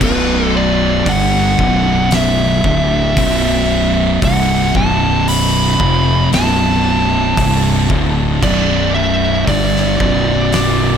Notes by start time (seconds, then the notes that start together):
0.00 B0 B1 F#2 B2 B4, kick, crash
0.45 A4
0.57 D5
1.06 G1 G2 D3 G3 F#5, kick, open hi-hat
1.58 B0 B1 F#2 B2, kick
2.11 E5, snare, open hi-hat
2.64 D1 D2 A2 D3, kick
3.17 B0 B1 F#2 B2, kick, open hi-hat
4.22 C1 C2 G2 C3 F#5, kick, open hi-hat
4.75 B0 B1 F#2 B2 A5, kick
5.28 B5, open hi-hat
5.80 F1 F2 C3 F3, kick
6.32 B0 B1 F#2 B2 A5, snare, open hi-hat
7.36 C1 C2 G2 C3, kick, open hi-hat
7.89 D1 D2 A2 D3, kick
8.42 B0 B1 F#2 B2 D5, kick, crash
8.95 E5
9.47 G1 G2 D3 G3 D5, kick, open hi-hat
9.76 snare
10.00 B0 B1 F#2 B2, kick
10.52 snare, open hi-hat